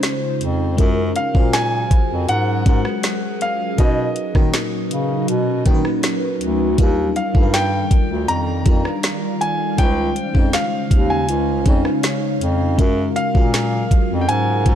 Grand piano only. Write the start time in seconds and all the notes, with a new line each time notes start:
1.16 F5
1.53 G#5
2.29 F#5
3.42 F5
3.80 D#5
7.16 F5
7.54 G5
8.28 A#5
9.41 G#5
9.79 G5
10.54 F5
11.10 G#5
13.16 F5
14.21 G5
14.29 G#5